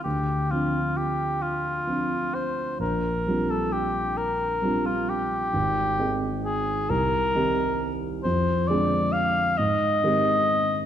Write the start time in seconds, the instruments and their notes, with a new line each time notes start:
0.04 grand piano D2, cor anglais G4
0.51 grand piano F3 C4 D4 F4, cor anglais F4
0.97 cor anglais G4
1.42 cor anglais F4
1.87 grand piano F3 C4 D4 F4
2.34 cor anglais C5
2.79 grand piano A#1, cor anglais A#4
3.27 grand piano G3 C4 D4 F4
3.50 cor anglais A4
3.72 cor anglais G4
4.17 cor anglais A#4
4.62 grand piano G3 C4 D4 F4
4.86 cor anglais F4
5.09 cor anglais G4
5.53 grand piano G#1
5.99 grand piano D#3 C4 D#4 G#4
6.45 cor anglais G#4
6.90 grand piano C2, cor anglais A#4
7.35 grand piano D#3 C4 D#4 G4
8.24 grand piano F2, cor anglais C5
8.68 grand piano D3 G#3 C4 G#4, cor anglais D5
9.13 cor anglais F5
9.58 grand piano G#2, cor anglais D#5
10.03 grand piano D#3 G#3 C4 G4